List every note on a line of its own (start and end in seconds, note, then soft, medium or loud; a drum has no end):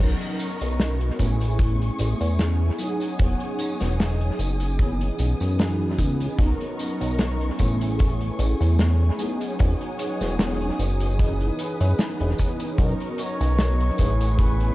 0.00 0.15 B1 loud
0.00 1.11 F#3 medium
0.00 1.12 B3 medium
0.00 2.77 B3 medium
0.00 1.12 C#4 medium
0.00 1.13 D#4 medium
0.00 1.13 A#4 medium
0.00 1.19 D#5 medium
0.00 1.19 A#5 medium
0.00 1.19 C#6 medium
0.00 crash loud
0.21 closed hi-hat medium
0.39 closed hi-hat medium
0.39 tambourine medium
0.61 1.11 B1 medium
0.61 closed hi-hat medium
0.61 tambourine soft
0.80 snare loud
0.80 closed hi-hat medium
0.80 tambourine soft
1.01 closed hi-hat medium
1.18 1.91 A1 medium
1.18 2.71 A3 medium
1.18 2.72 B3 medium
1.18 2.72 C#4 medium
1.18 2.72 E4 medium
1.18 2.73 G#4 medium
1.18 6.36 G#5 medium
1.18 2.78 C#6 medium
1.18 kick medium
1.18 closed hi-hat medium
1.18 tambourine medium
1.41 closed hi-hat medium
1.41 tambourine soft
1.59 kick loud
1.59 closed hi-hat medium
1.59 tambourine soft
1.82 closed hi-hat soft
1.99 2.15 A1 medium
1.99 closed hi-hat medium
1.99 tambourine medium
2.21 2.71 E2 loud
2.21 closed hi-hat medium
2.21 tambourine soft
2.39 snare loud
2.39 closed hi-hat medium
2.39 tambourine soft
2.78 4.71 F#3 medium
2.78 4.72 B3 medium
2.78 4.72 C#4 medium
2.78 4.72 D#4 medium
2.78 4.73 G#4 loud
2.78 4.77 C#5 medium
2.78 4.77 F#5 medium
2.78 6.36 D#6 medium
2.78 closed hi-hat medium
2.78 tambourine medium
3.00 closed hi-hat medium
3.00 tambourine soft
3.19 3.35 E1 loud
3.19 kick loud
3.19 closed hi-hat medium
3.40 closed hi-hat medium
3.59 closed hi-hat medium
3.59 tambourine medium
3.80 4.31 E1 medium
3.80 snare soft
3.80 closed hi-hat medium
3.80 tambourine soft
4.00 snare loud
4.00 closed hi-hat medium
4.00 tambourine soft
4.21 closed hi-hat soft
4.39 5.11 F#1 medium
4.39 closed hi-hat medium
4.39 tambourine medium
4.60 closed hi-hat medium
4.60 tambourine soft
4.78 6.31 E3 medium
4.78 6.32 B3 medium
4.78 9.15 B3 medium
4.78 6.32 C#4 medium
4.78 6.32 D#4 medium
4.78 6.33 G#4 medium
4.78 kick loud
4.78 closed hi-hat medium
4.78 tambourine soft
5.01 closed hi-hat medium
5.19 5.35 B1 medium
5.19 closed hi-hat medium
5.19 tambourine medium
5.40 6.00 F#2 medium
5.40 closed hi-hat medium
5.40 tambourine soft
5.59 snare loud
5.59 closed hi-hat medium
5.59 tambourine soft
5.99 6.29 C#2 loud
5.99 kick medium
5.99 closed hi-hat medium
5.99 tambourine medium
6.21 closed hi-hat medium
6.21 tambourine soft
6.38 6.54 B1 loud
6.38 7.51 F#3 medium
6.38 7.52 B3 medium
6.38 7.52 C#4 medium
6.38 7.52 D#4 medium
6.38 7.53 A#4 medium
6.38 7.58 D#5 medium
6.38 7.58 A#5 medium
6.38 9.16 C#6 medium
6.38 kick loud
6.38 closed hi-hat medium
6.38 tambourine soft
6.61 closed hi-hat medium
6.79 closed hi-hat medium
6.79 tambourine medium
7.01 7.51 B1 medium
7.01 closed hi-hat medium
7.01 tambourine soft
7.19 snare loud
7.19 closed hi-hat medium
7.19 tambourine soft
7.41 closed hi-hat medium
7.58 8.31 A1 medium
7.58 9.11 A3 medium
7.58 9.11 B3 medium
7.58 9.12 C#4 medium
7.58 9.12 E4 medium
7.58 9.13 G#4 medium
7.58 12.76 G#5 medium
7.58 kick medium
7.58 closed hi-hat medium
7.58 tambourine medium
7.81 closed hi-hat medium
7.81 tambourine soft
7.99 kick loud
7.99 closed hi-hat medium
7.99 tambourine soft
8.21 closed hi-hat soft
8.39 8.55 A1 loud
8.39 closed hi-hat medium
8.39 tambourine medium
8.60 9.11 E2 loud
8.60 closed hi-hat medium
8.60 tambourine soft
8.78 snare loud
8.78 closed hi-hat medium
8.78 tambourine soft
9.18 11.11 F#3 medium
9.18 11.12 B3 medium
9.18 11.12 C#4 medium
9.18 11.12 D#4 medium
9.18 11.13 G#4 loud
9.18 11.17 C#5 medium
9.18 11.17 F#5 medium
9.18 12.76 D#6 medium
9.18 closed hi-hat medium
9.18 tambourine medium
9.41 closed hi-hat medium
9.41 tambourine soft
9.59 9.75 E1 loud
9.59 kick loud
9.59 closed hi-hat medium
9.59 tambourine soft
9.81 closed hi-hat soft
9.99 closed hi-hat medium
9.99 tambourine medium
10.21 10.71 E1 medium
10.21 snare soft
10.21 closed hi-hat medium
10.21 tambourine soft
10.39 snare loud
10.39 closed hi-hat medium
10.39 tambourine soft
10.61 closed hi-hat soft
10.79 11.51 F#1 medium
10.79 closed hi-hat medium
10.79 tambourine medium
11.00 closed hi-hat medium
11.00 tambourine soft
11.18 12.71 E3 medium
11.18 12.71 B3 medium
11.18 12.72 C#4 medium
11.18 12.72 D#4 medium
11.18 12.73 G#4 medium
11.18 12.78 B4 medium
11.18 kick loud
11.18 closed hi-hat medium
11.18 tambourine soft
11.40 closed hi-hat medium
11.59 closed hi-hat medium
11.59 tambourine medium
11.80 11.94 F#2 medium
11.80 closed hi-hat medium
11.80 tambourine soft
11.99 snare loud
11.99 closed hi-hat medium
11.99 tambourine soft
12.21 12.34 E1 loud
12.21 closed hi-hat soft
12.39 kick medium
12.39 closed hi-hat medium
12.39 tambourine medium
12.60 closed hi-hat medium
12.60 tambourine soft
12.77 12.94 B1 loud
12.77 13.91 F#3 medium
12.77 13.92 B3 medium
12.77 13.98 B3 medium
12.77 13.92 C#4 medium
12.77 13.92 D#4 medium
12.77 13.93 A#4 medium
12.77 13.98 D#5 medium
12.77 13.98 A#5 medium
12.77 14.75 C#6 medium
12.77 kick loud
12.77 closed hi-hat medium
12.77 tambourine soft
13.01 closed hi-hat soft
13.18 14.33 C#5 loud
13.18 closed hi-hat medium
13.18 tambourine medium
13.41 13.91 B1 medium
13.41 closed hi-hat medium
13.41 tambourine soft
13.59 snare loud
13.59 closed hi-hat medium
13.59 tambourine soft
13.81 closed hi-hat medium
13.98 14.71 A1 medium
13.98 14.75 A3 medium
13.98 14.75 B3 medium
13.98 14.75 C#4 medium
13.98 14.75 E4 medium
13.98 14.75 G#4 medium
13.98 14.75 B4 medium
13.98 14.75 G#5 medium
13.98 kick medium
13.98 closed hi-hat medium
13.98 tambourine medium
14.21 closed hi-hat medium
14.21 tambourine soft
14.33 14.40 C#5 medium
14.39 14.75 B4 medium
14.39 kick loud
14.39 closed hi-hat medium
14.39 tambourine soft
14.60 closed hi-hat medium